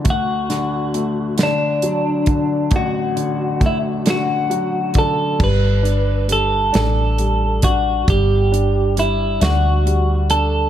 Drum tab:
CC |------|------|x-----|------|
HH |xxxxxx|xxxxxx|-xxxxx|xxxxxx|
SD |-o-o--|---o--|---o--|---o--|
BD |o----o|o-o--o|o----o|o-----|